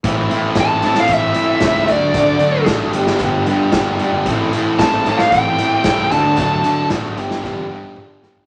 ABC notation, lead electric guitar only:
X:1
M:4/4
L:1/16
Q:1/4=113
K:Am
V:1 name="Lead electric guitar"
z4 a3 f e6 d2- | d4 z12 | z4 a3 f g6 a2- | a4 z12 |]